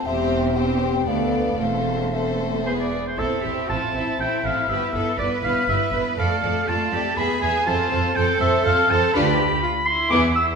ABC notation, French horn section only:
X:1
M:3/4
L:1/8
Q:1/4=121
K:Am
V:1 name="French horn section"
[CG]2 [CG]2 [B,A]2 | [CA]2 [CA]2 [B,^G] z | z6 | z6 |
z6 | z6 | z6 |]